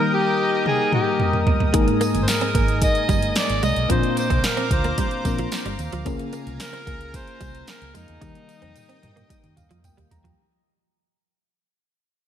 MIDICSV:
0, 0, Header, 1, 8, 480
1, 0, Start_track
1, 0, Key_signature, -3, "major"
1, 0, Tempo, 540541
1, 1542, Time_signature, 4, 2, 24, 8
1, 10904, End_track
2, 0, Start_track
2, 0, Title_t, "Analog synth pad"
2, 0, Program_c, 0, 89
2, 0, Note_on_c, 0, 70, 86
2, 0, Note_on_c, 0, 75, 80
2, 0, Note_on_c, 0, 79, 81
2, 0, Note_on_c, 0, 87, 93
2, 1524, Note_off_c, 0, 75, 0
2, 1525, Note_off_c, 0, 79, 0
2, 1549, Note_on_c, 0, 75, 80
2, 1551, Note_on_c, 0, 80, 80
2, 3426, Note_off_c, 0, 70, 0
2, 3429, Note_off_c, 0, 87, 0
2, 3446, Note_off_c, 0, 75, 0
2, 3447, Note_off_c, 0, 80, 0
2, 3462, Note_on_c, 0, 77, 77
2, 3462, Note_on_c, 0, 86, 100
2, 3464, Note_on_c, 0, 72, 85
2, 3464, Note_on_c, 0, 82, 80
2, 5363, Note_off_c, 0, 86, 0
2, 5364, Note_off_c, 0, 72, 0
2, 5364, Note_off_c, 0, 82, 0
2, 5384, Note_on_c, 0, 82, 94
2, 5385, Note_on_c, 0, 70, 87
2, 5386, Note_on_c, 0, 80, 78
2, 7267, Note_off_c, 0, 77, 0
2, 7284, Note_off_c, 0, 82, 0
2, 7285, Note_off_c, 0, 80, 0
2, 7297, Note_on_c, 0, 87, 97
2, 7299, Note_on_c, 0, 79, 77
2, 7300, Note_on_c, 0, 75, 80
2, 9188, Note_off_c, 0, 70, 0
2, 9201, Note_off_c, 0, 79, 0
2, 9201, Note_off_c, 0, 87, 0
2, 9202, Note_off_c, 0, 75, 0
2, 10904, End_track
3, 0, Start_track
3, 0, Title_t, "Alto saxophone"
3, 0, Program_c, 1, 65
3, 0, Note_on_c, 1, 70, 91
3, 111, Note_off_c, 1, 70, 0
3, 117, Note_on_c, 1, 67, 88
3, 556, Note_off_c, 1, 67, 0
3, 596, Note_on_c, 1, 68, 92
3, 813, Note_off_c, 1, 68, 0
3, 836, Note_on_c, 1, 67, 84
3, 1276, Note_off_c, 1, 67, 0
3, 1974, Note_on_c, 1, 72, 70
3, 2036, Note_on_c, 1, 70, 93
3, 2049, Note_off_c, 1, 72, 0
3, 2509, Note_off_c, 1, 70, 0
3, 2516, Note_on_c, 1, 75, 108
3, 2956, Note_off_c, 1, 75, 0
3, 2995, Note_on_c, 1, 74, 102
3, 3213, Note_off_c, 1, 74, 0
3, 3232, Note_on_c, 1, 75, 104
3, 3450, Note_off_c, 1, 75, 0
3, 3472, Note_on_c, 1, 72, 95
3, 3691, Note_off_c, 1, 72, 0
3, 3716, Note_on_c, 1, 72, 93
3, 3951, Note_on_c, 1, 70, 87
3, 3964, Note_off_c, 1, 72, 0
3, 4193, Note_on_c, 1, 72, 93
3, 4206, Note_off_c, 1, 70, 0
3, 4428, Note_off_c, 1, 72, 0
3, 4435, Note_on_c, 1, 72, 88
3, 5113, Note_off_c, 1, 72, 0
3, 5879, Note_on_c, 1, 70, 108
3, 6355, Note_on_c, 1, 72, 111
3, 6368, Note_off_c, 1, 70, 0
3, 6826, Note_off_c, 1, 72, 0
3, 6831, Note_on_c, 1, 70, 105
3, 7051, Note_off_c, 1, 70, 0
3, 7071, Note_on_c, 1, 63, 104
3, 8951, Note_off_c, 1, 63, 0
3, 10904, End_track
4, 0, Start_track
4, 0, Title_t, "FM electric piano"
4, 0, Program_c, 2, 5
4, 0, Control_c, 2, 64, 127
4, 0, Note_on_c, 2, 51, 64
4, 0, Note_on_c, 2, 55, 69
4, 0, Note_on_c, 2, 58, 61
4, 0, Note_on_c, 2, 63, 65
4, 0, Note_on_c, 2, 67, 62
4, 0, Note_on_c, 2, 70, 78
4, 306, Note_off_c, 2, 51, 0
4, 1500, Note_off_c, 2, 55, 0
4, 1504, Note_off_c, 2, 58, 0
4, 1505, Note_off_c, 2, 63, 0
4, 1509, Note_off_c, 2, 67, 0
4, 1511, Note_off_c, 2, 70, 0
4, 1533, Note_on_c, 2, 56, 79
4, 1539, Note_on_c, 2, 58, 69
4, 1542, Note_on_c, 2, 44, 73
4, 1545, Note_on_c, 2, 63, 76
4, 1547, Note_on_c, 2, 68, 76
4, 1554, Control_c, 2, 64, 0
4, 1556, Note_on_c, 2, 70, 89
4, 1724, Control_c, 2, 64, 127
4, 2227, Note_off_c, 2, 44, 0
4, 3422, Note_off_c, 2, 56, 0
4, 3425, Note_off_c, 2, 58, 0
4, 3428, Note_off_c, 2, 63, 0
4, 3429, Note_off_c, 2, 68, 0
4, 3434, Note_off_c, 2, 70, 0
4, 3451, Note_on_c, 2, 58, 68
4, 3460, Note_on_c, 2, 60, 64
4, 3462, Note_on_c, 2, 46, 66
4, 3463, Note_on_c, 2, 62, 61
4, 3469, Note_on_c, 2, 65, 64
4, 3472, Control_c, 2, 64, 0
4, 3473, Note_on_c, 2, 70, 72
4, 3637, Control_c, 2, 64, 127
4, 4147, Note_off_c, 2, 46, 0
4, 4633, Note_off_c, 2, 58, 0
4, 4637, Note_off_c, 2, 60, 0
4, 4639, Note_off_c, 2, 62, 0
4, 4642, Note_off_c, 2, 65, 0
4, 4644, Note_off_c, 2, 70, 0
4, 4656, Note_on_c, 2, 58, 54
4, 4659, Note_on_c, 2, 60, 47
4, 4661, Note_on_c, 2, 62, 48
4, 4664, Note_on_c, 2, 65, 49
4, 4666, Note_on_c, 2, 70, 60
4, 5363, Note_off_c, 2, 58, 0
4, 5373, Note_off_c, 2, 65, 0
4, 5373, Note_on_c, 2, 58, 82
4, 5378, Note_on_c, 2, 61, 74
4, 5381, Note_off_c, 2, 60, 0
4, 5382, Note_off_c, 2, 62, 0
4, 5383, Note_off_c, 2, 70, 0
4, 5383, Note_on_c, 2, 65, 75
4, 5385, Note_on_c, 2, 49, 80
4, 5390, Note_on_c, 2, 68, 77
4, 5393, Control_c, 2, 64, 0
4, 5393, Note_on_c, 2, 70, 91
4, 5563, Control_c, 2, 64, 127
4, 6068, Note_off_c, 2, 49, 0
4, 7263, Note_off_c, 2, 58, 0
4, 7265, Note_off_c, 2, 61, 0
4, 7267, Note_off_c, 2, 65, 0
4, 7271, Note_off_c, 2, 68, 0
4, 7272, Note_off_c, 2, 70, 0
4, 7292, Note_on_c, 2, 55, 66
4, 7297, Note_on_c, 2, 58, 59
4, 7301, Note_on_c, 2, 51, 68
4, 7301, Note_on_c, 2, 63, 63
4, 7307, Note_on_c, 2, 67, 62
4, 7312, Note_on_c, 2, 70, 77
4, 7316, Control_c, 2, 64, 0
4, 7453, Control_c, 2, 64, 127
4, 7986, Note_off_c, 2, 51, 0
4, 8497, Note_on_c, 2, 77, 70
4, 8723, Note_off_c, 2, 77, 0
4, 8744, Note_on_c, 2, 79, 77
4, 8967, Note_off_c, 2, 79, 0
4, 8981, Note_on_c, 2, 82, 81
4, 9182, Note_off_c, 2, 55, 0
4, 9184, Note_off_c, 2, 58, 0
4, 9186, Note_off_c, 2, 63, 0
4, 9189, Note_off_c, 2, 67, 0
4, 9192, Note_off_c, 2, 70, 0
4, 9205, Note_off_c, 2, 82, 0
4, 9234, Control_c, 2, 64, 0
4, 10904, End_track
5, 0, Start_track
5, 0, Title_t, "Clean electric guitar"
5, 0, Program_c, 3, 27
5, 1542, Note_on_c, 3, 56, 83
5, 1615, Note_off_c, 3, 56, 0
5, 1783, Note_on_c, 3, 58, 84
5, 1856, Note_off_c, 3, 58, 0
5, 2144, Note_on_c, 3, 60, 85
5, 2217, Note_off_c, 3, 60, 0
5, 2265, Note_on_c, 3, 58, 77
5, 2337, Note_off_c, 3, 58, 0
5, 2743, Note_on_c, 3, 55, 88
5, 2816, Note_off_c, 3, 55, 0
5, 3223, Note_on_c, 3, 56, 76
5, 3296, Note_off_c, 3, 56, 0
5, 3459, Note_on_c, 3, 58, 92
5, 3533, Note_off_c, 3, 58, 0
5, 3820, Note_on_c, 3, 60, 81
5, 3893, Note_off_c, 3, 60, 0
5, 4060, Note_on_c, 3, 60, 79
5, 4134, Note_off_c, 3, 60, 0
5, 4304, Note_on_c, 3, 58, 80
5, 4377, Note_off_c, 3, 58, 0
5, 4424, Note_on_c, 3, 55, 77
5, 4496, Note_off_c, 3, 55, 0
5, 4788, Note_on_c, 3, 53, 84
5, 4859, Note_off_c, 3, 53, 0
5, 5024, Note_on_c, 3, 55, 80
5, 5096, Note_off_c, 3, 55, 0
5, 5263, Note_on_c, 3, 53, 73
5, 5336, Note_off_c, 3, 53, 0
5, 5383, Note_on_c, 3, 61, 84
5, 5456, Note_off_c, 3, 61, 0
5, 5621, Note_on_c, 3, 58, 82
5, 5694, Note_off_c, 3, 58, 0
5, 5976, Note_on_c, 3, 60, 88
5, 6051, Note_off_c, 3, 60, 0
5, 6097, Note_on_c, 3, 58, 85
5, 6171, Note_off_c, 3, 58, 0
5, 6576, Note_on_c, 3, 55, 89
5, 6651, Note_off_c, 3, 55, 0
5, 7055, Note_on_c, 3, 56, 81
5, 7130, Note_off_c, 3, 56, 0
5, 7294, Note_on_c, 3, 63, 95
5, 7370, Note_off_c, 3, 63, 0
5, 7654, Note_on_c, 3, 60, 72
5, 7730, Note_off_c, 3, 60, 0
5, 7894, Note_on_c, 3, 60, 76
5, 7970, Note_off_c, 3, 60, 0
5, 8136, Note_on_c, 3, 58, 77
5, 8211, Note_off_c, 3, 58, 0
5, 8254, Note_on_c, 3, 55, 81
5, 8330, Note_off_c, 3, 55, 0
5, 8619, Note_on_c, 3, 53, 89
5, 8693, Note_off_c, 3, 53, 0
5, 8857, Note_on_c, 3, 55, 79
5, 8931, Note_off_c, 3, 55, 0
5, 9095, Note_on_c, 3, 53, 75
5, 9170, Note_off_c, 3, 53, 0
5, 10904, End_track
6, 0, Start_track
6, 0, Title_t, "Fingered electric bass"
6, 0, Program_c, 4, 33
6, 1546, Note_on_c, 4, 32, 106
6, 1634, Note_off_c, 4, 32, 0
6, 1910, Note_on_c, 4, 31, 90
6, 1997, Note_off_c, 4, 31, 0
6, 2265, Note_on_c, 4, 32, 89
6, 2534, Note_off_c, 4, 32, 0
6, 2747, Note_on_c, 4, 31, 89
6, 2925, Note_off_c, 4, 31, 0
6, 3107, Note_on_c, 4, 32, 85
6, 3196, Note_off_c, 4, 32, 0
6, 3226, Note_on_c, 4, 36, 88
6, 3315, Note_off_c, 4, 36, 0
6, 3344, Note_on_c, 4, 35, 89
6, 3434, Note_off_c, 4, 35, 0
6, 3464, Note_on_c, 4, 34, 104
6, 3553, Note_off_c, 4, 34, 0
6, 3826, Note_on_c, 4, 36, 85
6, 3915, Note_off_c, 4, 36, 0
6, 4180, Note_on_c, 4, 38, 91
6, 4361, Note_off_c, 4, 38, 0
6, 4665, Note_on_c, 4, 34, 93
6, 4844, Note_off_c, 4, 34, 0
6, 5022, Note_on_c, 4, 31, 84
6, 5112, Note_off_c, 4, 31, 0
6, 5144, Note_on_c, 4, 39, 96
6, 5233, Note_off_c, 4, 39, 0
6, 5264, Note_on_c, 4, 38, 92
6, 5354, Note_off_c, 4, 38, 0
6, 5383, Note_on_c, 4, 37, 106
6, 5473, Note_off_c, 4, 37, 0
6, 5745, Note_on_c, 4, 36, 86
6, 5834, Note_off_c, 4, 36, 0
6, 6102, Note_on_c, 4, 37, 96
6, 6372, Note_off_c, 4, 37, 0
6, 6581, Note_on_c, 4, 36, 88
6, 6761, Note_off_c, 4, 36, 0
6, 6942, Note_on_c, 4, 37, 87
6, 7032, Note_off_c, 4, 37, 0
6, 7066, Note_on_c, 4, 41, 89
6, 7155, Note_off_c, 4, 41, 0
6, 7189, Note_on_c, 4, 40, 88
6, 7277, Note_off_c, 4, 40, 0
6, 7299, Note_on_c, 4, 39, 98
6, 7390, Note_off_c, 4, 39, 0
6, 7661, Note_on_c, 4, 41, 87
6, 7751, Note_off_c, 4, 41, 0
6, 8023, Note_on_c, 4, 43, 94
6, 8203, Note_off_c, 4, 43, 0
6, 8380, Note_on_c, 4, 51, 100
6, 8471, Note_off_c, 4, 51, 0
6, 8505, Note_on_c, 4, 39, 94
6, 8594, Note_off_c, 4, 39, 0
6, 8625, Note_on_c, 4, 41, 83
6, 8804, Note_off_c, 4, 41, 0
6, 8864, Note_on_c, 4, 39, 89
6, 8954, Note_off_c, 4, 39, 0
6, 8987, Note_on_c, 4, 40, 88
6, 9165, Note_off_c, 4, 40, 0
6, 10904, End_track
7, 0, Start_track
7, 0, Title_t, "Muted clean electric guitar strokes"
7, 1665, Note_on_c, 9, 29, 51
7, 1754, Note_off_c, 9, 29, 0
7, 2025, Note_on_c, 9, 29, 45
7, 2114, Note_off_c, 9, 29, 0
7, 3700, Note_on_c, 9, 29, 47
7, 3788, Note_off_c, 9, 29, 0
7, 4183, Note_on_c, 9, 29, 47
7, 4272, Note_off_c, 9, 29, 0
7, 4665, Note_on_c, 9, 29, 46
7, 4754, Note_off_c, 9, 29, 0
7, 5150, Note_on_c, 9, 29, 48
7, 5238, Note_off_c, 9, 29, 0
7, 5502, Note_on_c, 9, 29, 53
7, 5591, Note_off_c, 9, 29, 0
7, 5858, Note_on_c, 9, 29, 47
7, 5947, Note_off_c, 9, 29, 0
7, 7535, Note_on_c, 9, 29, 47
7, 7624, Note_off_c, 9, 29, 0
7, 8015, Note_on_c, 9, 29, 47
7, 8104, Note_off_c, 9, 29, 0
7, 8495, Note_on_c, 9, 29, 47
7, 8584, Note_off_c, 9, 29, 0
7, 8979, Note_on_c, 9, 29, 46
7, 9068, Note_off_c, 9, 29, 0
7, 10904, End_track
8, 0, Start_track
8, 0, Title_t, "Drums"
8, 586, Note_on_c, 9, 48, 59
8, 675, Note_off_c, 9, 48, 0
8, 822, Note_on_c, 9, 47, 77
8, 911, Note_off_c, 9, 47, 0
8, 1062, Note_on_c, 9, 45, 83
8, 1151, Note_off_c, 9, 45, 0
8, 1185, Note_on_c, 9, 45, 77
8, 1273, Note_off_c, 9, 45, 0
8, 1303, Note_on_c, 9, 43, 103
8, 1392, Note_off_c, 9, 43, 0
8, 1424, Note_on_c, 9, 43, 93
8, 1513, Note_off_c, 9, 43, 0
8, 1543, Note_on_c, 9, 42, 97
8, 1546, Note_on_c, 9, 36, 113
8, 1632, Note_off_c, 9, 42, 0
8, 1634, Note_off_c, 9, 36, 0
8, 1667, Note_on_c, 9, 42, 48
8, 1756, Note_off_c, 9, 42, 0
8, 1784, Note_on_c, 9, 42, 83
8, 1784, Note_on_c, 9, 54, 56
8, 1873, Note_off_c, 9, 42, 0
8, 1873, Note_off_c, 9, 54, 0
8, 1906, Note_on_c, 9, 42, 53
8, 1994, Note_off_c, 9, 42, 0
8, 2023, Note_on_c, 9, 42, 93
8, 2024, Note_on_c, 9, 38, 121
8, 2024, Note_on_c, 9, 54, 72
8, 2026, Note_off_c, 9, 54, 0
8, 2026, Note_on_c, 9, 54, 88
8, 2112, Note_off_c, 9, 42, 0
8, 2113, Note_off_c, 9, 38, 0
8, 2115, Note_off_c, 9, 54, 0
8, 2143, Note_on_c, 9, 42, 51
8, 2232, Note_off_c, 9, 42, 0
8, 2263, Note_on_c, 9, 36, 98
8, 2263, Note_on_c, 9, 54, 31
8, 2264, Note_on_c, 9, 42, 74
8, 2352, Note_off_c, 9, 36, 0
8, 2352, Note_off_c, 9, 54, 0
8, 2353, Note_off_c, 9, 42, 0
8, 2383, Note_on_c, 9, 42, 51
8, 2472, Note_off_c, 9, 42, 0
8, 2501, Note_on_c, 9, 42, 94
8, 2503, Note_on_c, 9, 54, 54
8, 2504, Note_on_c, 9, 36, 95
8, 2590, Note_off_c, 9, 42, 0
8, 2591, Note_off_c, 9, 54, 0
8, 2592, Note_off_c, 9, 36, 0
8, 2620, Note_on_c, 9, 42, 48
8, 2709, Note_off_c, 9, 42, 0
8, 2743, Note_on_c, 9, 42, 77
8, 2744, Note_on_c, 9, 36, 102
8, 2746, Note_on_c, 9, 54, 54
8, 2832, Note_off_c, 9, 42, 0
8, 2833, Note_off_c, 9, 36, 0
8, 2835, Note_off_c, 9, 54, 0
8, 2864, Note_on_c, 9, 42, 62
8, 2952, Note_off_c, 9, 42, 0
8, 2979, Note_on_c, 9, 54, 72
8, 2980, Note_on_c, 9, 42, 89
8, 2983, Note_off_c, 9, 54, 0
8, 2983, Note_on_c, 9, 38, 124
8, 2983, Note_on_c, 9, 54, 84
8, 3069, Note_off_c, 9, 42, 0
8, 3071, Note_off_c, 9, 54, 0
8, 3072, Note_off_c, 9, 38, 0
8, 3104, Note_on_c, 9, 42, 54
8, 3193, Note_off_c, 9, 42, 0
8, 3222, Note_on_c, 9, 42, 86
8, 3223, Note_on_c, 9, 54, 47
8, 3311, Note_off_c, 9, 42, 0
8, 3312, Note_off_c, 9, 54, 0
8, 3342, Note_on_c, 9, 42, 59
8, 3431, Note_off_c, 9, 42, 0
8, 3462, Note_on_c, 9, 42, 96
8, 3463, Note_on_c, 9, 36, 113
8, 3550, Note_off_c, 9, 42, 0
8, 3551, Note_off_c, 9, 36, 0
8, 3582, Note_on_c, 9, 42, 51
8, 3671, Note_off_c, 9, 42, 0
8, 3703, Note_on_c, 9, 54, 57
8, 3704, Note_on_c, 9, 42, 82
8, 3792, Note_off_c, 9, 42, 0
8, 3792, Note_off_c, 9, 54, 0
8, 3822, Note_on_c, 9, 42, 55
8, 3825, Note_on_c, 9, 36, 88
8, 3911, Note_off_c, 9, 42, 0
8, 3914, Note_off_c, 9, 36, 0
8, 3940, Note_on_c, 9, 42, 89
8, 3942, Note_on_c, 9, 38, 120
8, 3942, Note_on_c, 9, 54, 75
8, 3944, Note_off_c, 9, 54, 0
8, 3944, Note_on_c, 9, 54, 84
8, 4029, Note_off_c, 9, 42, 0
8, 4031, Note_off_c, 9, 38, 0
8, 4033, Note_off_c, 9, 54, 0
8, 4061, Note_on_c, 9, 42, 49
8, 4149, Note_off_c, 9, 42, 0
8, 4180, Note_on_c, 9, 36, 100
8, 4182, Note_on_c, 9, 42, 75
8, 4269, Note_off_c, 9, 36, 0
8, 4271, Note_off_c, 9, 42, 0
8, 4301, Note_on_c, 9, 42, 53
8, 4389, Note_off_c, 9, 42, 0
8, 4420, Note_on_c, 9, 54, 52
8, 4421, Note_on_c, 9, 42, 100
8, 4422, Note_on_c, 9, 36, 89
8, 4509, Note_off_c, 9, 42, 0
8, 4509, Note_off_c, 9, 54, 0
8, 4511, Note_off_c, 9, 36, 0
8, 4538, Note_on_c, 9, 42, 47
8, 4627, Note_off_c, 9, 42, 0
8, 4662, Note_on_c, 9, 36, 102
8, 4662, Note_on_c, 9, 42, 75
8, 4663, Note_on_c, 9, 54, 54
8, 4751, Note_off_c, 9, 36, 0
8, 4751, Note_off_c, 9, 42, 0
8, 4752, Note_off_c, 9, 54, 0
8, 4781, Note_on_c, 9, 42, 61
8, 4870, Note_off_c, 9, 42, 0
8, 4898, Note_on_c, 9, 54, 71
8, 4900, Note_on_c, 9, 42, 82
8, 4903, Note_on_c, 9, 38, 119
8, 4905, Note_off_c, 9, 54, 0
8, 4905, Note_on_c, 9, 54, 78
8, 4988, Note_off_c, 9, 42, 0
8, 4991, Note_off_c, 9, 38, 0
8, 4993, Note_off_c, 9, 54, 0
8, 5023, Note_on_c, 9, 42, 59
8, 5112, Note_off_c, 9, 42, 0
8, 5142, Note_on_c, 9, 42, 86
8, 5142, Note_on_c, 9, 54, 45
8, 5230, Note_off_c, 9, 42, 0
8, 5230, Note_off_c, 9, 54, 0
8, 5261, Note_on_c, 9, 42, 56
8, 5350, Note_off_c, 9, 42, 0
8, 5380, Note_on_c, 9, 42, 94
8, 5382, Note_on_c, 9, 36, 108
8, 5384, Note_on_c, 9, 54, 39
8, 5469, Note_off_c, 9, 42, 0
8, 5470, Note_off_c, 9, 36, 0
8, 5473, Note_off_c, 9, 54, 0
8, 5500, Note_on_c, 9, 42, 50
8, 5589, Note_off_c, 9, 42, 0
8, 5618, Note_on_c, 9, 42, 79
8, 5622, Note_on_c, 9, 54, 54
8, 5707, Note_off_c, 9, 42, 0
8, 5710, Note_off_c, 9, 54, 0
8, 5743, Note_on_c, 9, 42, 52
8, 5832, Note_off_c, 9, 42, 0
8, 5859, Note_on_c, 9, 42, 88
8, 5860, Note_on_c, 9, 54, 75
8, 5861, Note_on_c, 9, 38, 119
8, 5865, Note_off_c, 9, 54, 0
8, 5865, Note_on_c, 9, 54, 91
8, 5948, Note_off_c, 9, 42, 0
8, 5949, Note_off_c, 9, 38, 0
8, 5954, Note_off_c, 9, 54, 0
8, 5980, Note_on_c, 9, 42, 53
8, 6069, Note_off_c, 9, 42, 0
8, 6100, Note_on_c, 9, 36, 97
8, 6100, Note_on_c, 9, 54, 31
8, 6103, Note_on_c, 9, 42, 73
8, 6189, Note_off_c, 9, 36, 0
8, 6189, Note_off_c, 9, 54, 0
8, 6191, Note_off_c, 9, 42, 0
8, 6223, Note_on_c, 9, 42, 52
8, 6311, Note_off_c, 9, 42, 0
8, 6341, Note_on_c, 9, 42, 99
8, 6342, Note_on_c, 9, 36, 93
8, 6342, Note_on_c, 9, 54, 51
8, 6430, Note_off_c, 9, 36, 0
8, 6430, Note_off_c, 9, 42, 0
8, 6430, Note_off_c, 9, 54, 0
8, 6461, Note_on_c, 9, 42, 46
8, 6549, Note_off_c, 9, 42, 0
8, 6577, Note_on_c, 9, 42, 78
8, 6580, Note_on_c, 9, 36, 109
8, 6581, Note_on_c, 9, 54, 53
8, 6665, Note_off_c, 9, 42, 0
8, 6669, Note_off_c, 9, 36, 0
8, 6669, Note_off_c, 9, 54, 0
8, 6701, Note_on_c, 9, 42, 63
8, 6790, Note_off_c, 9, 42, 0
8, 6814, Note_on_c, 9, 54, 69
8, 6816, Note_on_c, 9, 42, 81
8, 6819, Note_on_c, 9, 38, 118
8, 6822, Note_off_c, 9, 54, 0
8, 6822, Note_on_c, 9, 54, 83
8, 6904, Note_off_c, 9, 42, 0
8, 6907, Note_off_c, 9, 38, 0
8, 6911, Note_off_c, 9, 54, 0
8, 6941, Note_on_c, 9, 42, 54
8, 7030, Note_off_c, 9, 42, 0
8, 7059, Note_on_c, 9, 42, 88
8, 7060, Note_on_c, 9, 54, 47
8, 7148, Note_off_c, 9, 42, 0
8, 7149, Note_off_c, 9, 54, 0
8, 7175, Note_on_c, 9, 42, 58
8, 7264, Note_off_c, 9, 42, 0
8, 7296, Note_on_c, 9, 42, 90
8, 7297, Note_on_c, 9, 48, 63
8, 7299, Note_on_c, 9, 36, 115
8, 7301, Note_on_c, 9, 54, 37
8, 7385, Note_off_c, 9, 42, 0
8, 7385, Note_off_c, 9, 48, 0
8, 7387, Note_off_c, 9, 36, 0
8, 7390, Note_off_c, 9, 54, 0
8, 7417, Note_on_c, 9, 48, 53
8, 7418, Note_on_c, 9, 42, 53
8, 7506, Note_off_c, 9, 48, 0
8, 7507, Note_off_c, 9, 42, 0
8, 7538, Note_on_c, 9, 42, 82
8, 7541, Note_on_c, 9, 54, 58
8, 7627, Note_off_c, 9, 42, 0
8, 7630, Note_off_c, 9, 54, 0
8, 7654, Note_on_c, 9, 42, 52
8, 7654, Note_on_c, 9, 48, 63
8, 7743, Note_off_c, 9, 42, 0
8, 7743, Note_off_c, 9, 48, 0
8, 7776, Note_on_c, 9, 42, 88
8, 7776, Note_on_c, 9, 47, 76
8, 7781, Note_on_c, 9, 54, 88
8, 7865, Note_off_c, 9, 42, 0
8, 7865, Note_off_c, 9, 47, 0
8, 7870, Note_off_c, 9, 54, 0
8, 7898, Note_on_c, 9, 42, 51
8, 7987, Note_off_c, 9, 42, 0
8, 8020, Note_on_c, 9, 47, 86
8, 8021, Note_on_c, 9, 42, 73
8, 8108, Note_off_c, 9, 47, 0
8, 8109, Note_off_c, 9, 42, 0
8, 8142, Note_on_c, 9, 42, 50
8, 8142, Note_on_c, 9, 47, 74
8, 8230, Note_off_c, 9, 42, 0
8, 8231, Note_off_c, 9, 47, 0
8, 8260, Note_on_c, 9, 36, 92
8, 8260, Note_on_c, 9, 54, 52
8, 8261, Note_on_c, 9, 42, 101
8, 8349, Note_off_c, 9, 36, 0
8, 8349, Note_off_c, 9, 54, 0
8, 8350, Note_off_c, 9, 42, 0
8, 8380, Note_on_c, 9, 42, 47
8, 8382, Note_on_c, 9, 45, 81
8, 8469, Note_off_c, 9, 42, 0
8, 8471, Note_off_c, 9, 45, 0
8, 8499, Note_on_c, 9, 42, 78
8, 8501, Note_on_c, 9, 45, 97
8, 8505, Note_on_c, 9, 54, 53
8, 8588, Note_off_c, 9, 42, 0
8, 8589, Note_off_c, 9, 45, 0
8, 8594, Note_off_c, 9, 54, 0
8, 8619, Note_on_c, 9, 42, 60
8, 8708, Note_off_c, 9, 42, 0
8, 8739, Note_on_c, 9, 42, 90
8, 8740, Note_on_c, 9, 43, 105
8, 8744, Note_on_c, 9, 54, 86
8, 8828, Note_off_c, 9, 42, 0
8, 8829, Note_off_c, 9, 43, 0
8, 8833, Note_off_c, 9, 54, 0
8, 8862, Note_on_c, 9, 43, 86
8, 8863, Note_on_c, 9, 42, 57
8, 8951, Note_off_c, 9, 43, 0
8, 8952, Note_off_c, 9, 42, 0
8, 8981, Note_on_c, 9, 43, 116
8, 8981, Note_on_c, 9, 54, 44
8, 8982, Note_on_c, 9, 42, 88
8, 9070, Note_off_c, 9, 42, 0
8, 9070, Note_off_c, 9, 43, 0
8, 9070, Note_off_c, 9, 54, 0
8, 9101, Note_on_c, 9, 42, 57
8, 9102, Note_on_c, 9, 43, 97
8, 9190, Note_off_c, 9, 42, 0
8, 9191, Note_off_c, 9, 43, 0
8, 10904, End_track
0, 0, End_of_file